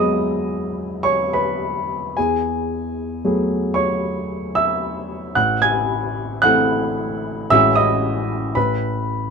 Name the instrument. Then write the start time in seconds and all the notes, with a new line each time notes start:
grand piano
Already playing: E2 F#3 G#3 B3 G#4 D#5 E5 D#6 E6
1.03 C#5 C#6
1.33 B4 B5
2.17 E2 G#4 G#5
3.25 F#3 A3 B3 G#4
3.74 C#5 C#6
4.55 E5 E6
5.35 A1 F#5 F#6
5.62 G#5 G#6
6.42 E3 A3 C4 A4 F#5 F#6
7.50 A1 E3 G#3 C#4 F#4 E5 E6
7.75 D#5 D#6
8.55 A1 B4 B5